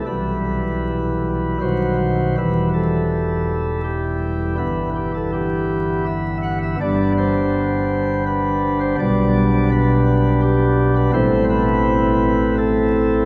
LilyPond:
<<
  \new Staff \with { instrumentName = "Pipe organ" } { \time 3/4 \key e \minor \tempo 4 = 82 b'2 c''4 | b'8 a'4. g'4 | b'8 g'16 a'16 g'4 e''8 fis''16 e''16 | d''8 c''4. b'8. c''16 |
d''4 b'4 g'8. b'16 | c''8 b'4. a'4 | }
  \new Staff \with { instrumentName = "Pipe organ" } { \clef bass \time 3/4 \key e \minor <b,, b, e g e'>2 <b,, b, dis fis fis'>4 | <e,, e, e g e'>2. | <g,, g, e b e'>2. | <g,, g, g b d'>2. |
<b,, b, g b d'>2. | <a,, a, a c' e'>2. | }
>>